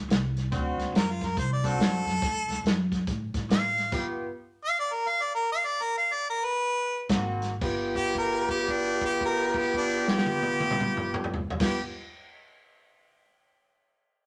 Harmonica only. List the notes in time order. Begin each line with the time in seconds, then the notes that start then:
0.97 A#4
1.12 F4
1.26 A#4
1.39 C5
1.53 D5
1.67 A4
3.52 F5
4.65 F5
4.79 D5
4.93 A#4
5.08 F5
5.22 D5
5.35 A#4
5.52 F5
5.65 D5
5.82 A#4
5.97 F5
6.13 D5
6.30 A#4
6.45 B4
7.96 G4
8.18 A#4
8.50 G4
8.71 D4
9.05 G4
9.25 A#4
9.58 G4
9.77 D4
10.10 G4
11.64 G4